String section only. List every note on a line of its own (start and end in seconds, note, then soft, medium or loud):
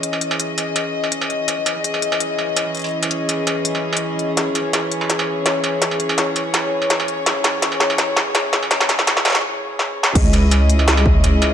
0.00 10.11 E3 medium
0.00 10.11 C#4 medium
0.00 10.11 G#4 medium
0.00 4.35 D#5 medium
4.37 10.13 C#5 medium
10.16 11.54 C#4 medium
10.16 11.54 E4 medium
10.16 11.54 G#4 medium
10.16 11.54 D#5 medium